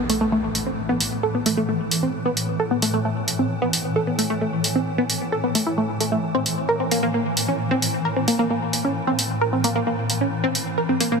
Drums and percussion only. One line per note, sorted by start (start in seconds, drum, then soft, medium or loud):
0.10 open hi-hat loud
0.55 open hi-hat medium
1.00 open hi-hat loud
1.46 open hi-hat loud
1.91 open hi-hat loud
2.37 open hi-hat loud
2.82 open hi-hat loud
3.28 open hi-hat loud
3.73 open hi-hat loud
4.19 open hi-hat loud
4.64 open hi-hat loud
5.10 open hi-hat loud
5.55 open hi-hat loud
6.00 open hi-hat loud
6.46 open hi-hat loud
6.91 open hi-hat loud
7.37 open hi-hat loud
7.82 open hi-hat loud
8.28 open hi-hat medium
8.73 open hi-hat loud
9.19 open hi-hat loud
9.64 open hi-hat loud
10.10 open hi-hat loud
10.55 open hi-hat loud
11.01 open hi-hat loud